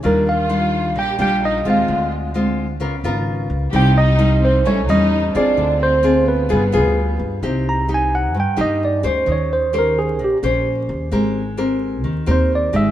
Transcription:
<<
  \new Staff \with { instrumentName = "Tine electric piano" } { \time 4/4 \key c \minor \tempo 4 = 130 bes'8 f''4. g''8 g''8 ees''8 f''8~ | f''8 r2. r8 | g''8 ees''4 c''8 cis''8 ees''4 d''8~ | d''8 c''4 b'2 r8 |
r8 bes''8 aes''8 fis''8 g''8 ees''8 d''8 c''8 | des''8 c''8 <a' bes'>8 aes'8 g'8 r4. | r2 r8 c''8 d''8 e''8 | }
  \new Staff \with { instrumentName = "Violin section" } { \time 4/4 \key c \minor bes8 f'4. g'8 g'8 ees'8 f'8~ | f'8 r2. r8 | g'8 ees'4 c'8 cis'8 ees'4 d'8~ | d'8 c'4 b2 r8 |
r1 | r1 | r1 | }
  \new Staff \with { instrumentName = "Nylon-string guitar" } { \time 4/4 \key c \minor << { <g d' f'>4 <g d' f'>4. <g d' f'>4 <aes c' f'>8~ | <aes c' f'>4 <aes c' f'>8 r8 <b f' bes'>8 <b f' bes'>4. | <g bes ees'>4 <g bes ees'>4 <g cis' e'>8 <g cis'>4 <c' f' aes'>8~ | <c' f' aes'>4 <c' f' aes'>4 <b f' aes'>8 <b f' aes'>4. |
<bes ees' g'>4 <bes ees' g'>4 r8 <bes ees' g'>4 <des' g' c''>8~ | <des' g' c''>4 <des' g' c''>4. <des' g' c''>4. | <c' g' bes'>8 r8 <c' g' bes'>4. <c' g' bes'>4 <aes ees' g'>8 | } \\ { ees2 bes,2 | d2 des2 | c2 a,2 | d2 g2 |
c2 g,2 | ees2 bes,2 | aes2 ees2 | } >> }
  \new Staff \with { instrumentName = "Upright bass" } { \clef bass \time 4/4 \key c \minor ees,2 bes,,16 r16 bes,,4 ees,8 | d,2 des,8 aes,,4 des,8 | c,2 a,,8 e,4 a,,8 | d,2 g,,8 d,4 g,8 |
c,2 g,16 r16 g,4 d,8 | ees,2 bes,,16 r16 bes,,4 ees,8 | aes,,2 ees,16 r16 ees,4 aes,,8 | }
>>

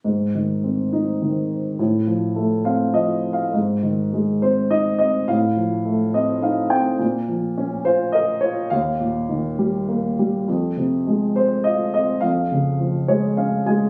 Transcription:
<<
  \new Staff \with { instrumentName = "Grand piano" } { \time 3/4 \key aes \major \tempo 4 = 104 << { r2. | r4. f''8 \tuplet 3/2 { ees''4 f''8 } | r2. | r4. ees''8 f''8 g''8 |
r2. | r2. | r2. | r4. des''8 f''8 aes''8 | } \\ { r2. | r2. | r4. c''8 ees''8 ees''8 | f''2 r4 |
r4. c''8 ees''8 des''8 | f''2 r4 | r4. c''8 ees''8 ees''8 | f''2 r4 | } >> }
  \new Staff \with { instrumentName = "Grand piano" } { \clef bass \time 3/4 \key aes \major aes,8 ees8 c'8 ees'8 ees4 | a,8 f8 a8 c'8 f4 | aes,8 ees8 aes8 c'8 ees'8 c'8 | a,8 f8 a8 c'8 ees'8 c'8 |
bes,8 f8 des'8 f'8 bes'8 f'8 | ees,8 bes,8 ees8 g8 bes8 g8 | f,8 c8 aes8 c'8 f'8 c'8 | f,8 des8 f8 aes8 des'8 aes8 | }
>>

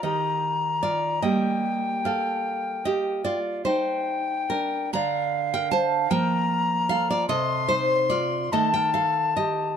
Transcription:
<<
  \new Staff \with { instrumentName = "Flute" } { \time 12/8 \key ees \lydian \tempo 4. = 49 bes''4. g''2~ g''8 r8 g''4. | f''4. bes''4. c'''4. a''4. | }
  \new Staff \with { instrumentName = "Nylon-string guitar" } { \time 12/8 \key ees \lydian << { <g' ees''>4 <f' d''>8 <g' ees''>4 <a' f''>4 <g' ees''>8 <f' d''>8 <ees' c''>4 <d' bes'>8 | <d'' bes''>8. <bes' g''>16 <c'' a''>8 <bes' g''>4 <a' f''>16 <f' d''>16 <a' ees''>8 <ees' c''>8 <f' d''>8 <a' ees''>16 <bes' g''>16 <a' f''>8 <g' ees''>8 | } \\ { ees4. <g bes>1~ <g bes>8 | d4. <f bes>4. c4. <ees a>4. | } >> }
>>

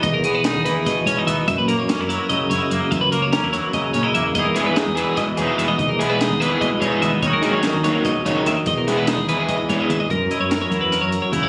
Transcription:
<<
  \new Staff \with { instrumentName = "Clean electric guitar" } { \time 7/8 \key e \lydian \tempo 4 = 146 dis''16 ais'16 gis'16 b'16 gis'8 b'16 gis'16 dis''8 cis''16 dis''16 e''16 dis''16 | e''16 b'16 ais'16 cis''16 ais'8 cis''16 ais'16 dis''8 cis''16 dis''16 e''16 dis''16 | e''16 b'16 ais'16 cis''16 ais'8 cis''16 ais'16 dis''8 cis''16 dis''16 e''16 dis''16 | dis''16 ais'16 gis'16 b'16 gis'8 b'16 gis'16 dis''8 cis''16 dis''16 e''16 dis''16 |
dis''16 ais'16 gis'16 b'16 gis'8 b'16 gis'16 dis''8 cis''16 dis''16 e''16 dis''16 | cis''16 ais'16 gis'16 cis''16 ais'8 cis''16 ais'16 dis''8 cis''16 dis''16 e''16 dis''16 | dis''16 ais'16 gis'16 b'16 gis'8 b'16 gis'16 dis''8 cis''16 dis''16 e''16 dis''16 | ais'8 dis''16 cis''16 ais'16 cis''16 ais'16 b'8 cis''16 ais'16 cis''16 ais'16 cis''16 | }
  \new Staff \with { instrumentName = "Clean electric guitar" } { \time 7/8 \key e \lydian << { r8 b8 dis'4. cis'16 dis'16 b8 | r8 ais8 cis'16 e'4~ e'16 e'8 ais8 | r8 ais8 cis'16 e'4~ e'16 cis'16 e'16 ais8 | <e b dis' gis'>8 b8 dis'4. dis'8 b8 |
r8 b8 dis'4. dis'8 b8 | <fis cis' dis' fis'>8 cis'8 dis'2~ dis'8 | r8 b8 dis'2~ dis'8 | ais'8 e'8 ais'8 e'8 ais'4 e'8 | } \\ { <e, e>4. e8 b,4. | fis,4. fis8 cis4. | fis,4. fis8 cis4. | e,4. e8 b,4. |
e,4. e8 b,4. | dis4. fis8 b,8 cis8 dis8 | e,4. e4. e,8 | fis,4. fis4. cis8 | } >> }
  \new Staff \with { instrumentName = "Overdriven electric guitar" } { \time 7/8 \key e \lydian r2. r8 | r2. r8 | r2. r8 | r8 <gis b e' gis'>8 r8 <gis b e' gis'>8 r8 <gis b e' gis'>8 r8 |
r8 <gis b e' gis'>8 r8 <gis b e' gis'>8 r8 <gis b e' gis'>8 r8 | r8 <dis fis ais dis'>8 r8 <dis fis ais dis'>8 r8 <dis fis ais dis'>8 r8 | r8 <e gis b e'>8 r8 <e gis b e'>8 r8 <e gis b e'>8 r8 | r2. r8 | }
  \new Staff \with { instrumentName = "Fingered electric bass" } { \clef bass \time 7/8 \key e \lydian dis,16 b,,4 dis,8 r8. gis,16 r16 dis,8 | fis,16 ais,8 r8 fis,8 r8. fis,16 r16 fis,16 r16 | e,16 cis,4 e,8 r8. ais,16 r16 e,8 | e,16 gis,8 r8 e,8 r8. e,16 r16 e,16 r16 |
dis,16 b,,4 dis,8 r8. gis,16 r16 dis,8 | dis,16 gis,8 r8 dis,8 r8. dis,16 r16 dis,16 r16 | e,16 b,,4 dis,8 r8. gis,16 r16 dis,8 | fis,8 r16 fis,8. e,8. fis,8 r16 e,8 | }
  \new DrumStaff \with { instrumentName = "Drums" } \drummode { \time 7/8 <hh bd>8 hh8 <hh sn>8 <hh sn>8 <hh bd sn>8 hh8 hh8 | <hh bd>8 hh8 <hh sn>8 hh8 <hh bd>8 <hh sn>8 hh8 | <hh bd>8 hh8 <hh sn>8 <hh sn>8 <hh bd>8 <hh sn>8 hh8 | <hh bd>8 <hh sn>8 <hh sn>8 hh8 <hh bd sn>8 hh8 hh8 |
<hh bd>8 hh8 <hh sn>8 hh8 <hh bd>8 hh8 hh8 | <hh bd>8 <hh sn>8 <hh sn>8 <hh sn>8 <hh bd>8 hh8 <hh sn>8 | <hh bd>8 <hh sn>8 <hh sn>8 hh8 <hh bd>8 hh8 hh8 | <hh bd>8 hh8 <hh sn>8 <hh bd>8 <hh sn>8 hh8 <hh bd>8 | }
>>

